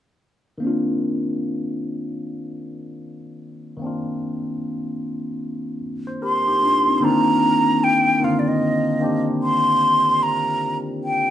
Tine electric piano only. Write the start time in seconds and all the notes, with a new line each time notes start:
0.58 D#3 A#3
0.62 C4 D4
0.67 F4
3.77 D#3 A#3
3.82 C4 D4
3.86 F4
6.07 C5
6.22 G4 A#4
6.47 D#4 G4
6.62 D4 F4
6.86 C4 D#4
7.00 D3 A#3 C4 D4
7.05 D#3 F4
8.20 D3 D#3 A#3 C4
8.24 F4
8.99 D#3 A#3 C4 D4
9.04 G4